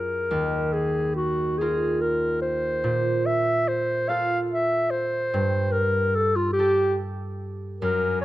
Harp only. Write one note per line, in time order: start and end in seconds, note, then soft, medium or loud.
0.00 0.34 F#2 soft
0.00 1.60 F4 soft
0.00 0.34 G#4 soft
0.00 0.18 A#4 soft
0.31 2.88 D#2 soft
1.61 4.08 F4 soft
1.61 5.52 A#4 soft
2.84 5.36 A#2 soft
4.09 5.36 F4 soft
4.09 6.58 A4 soft
5.34 7.85 G2 soft
6.59 7.85 G4 soft
6.59 7.85 A4 soft
7.82 8.25 F#2 medium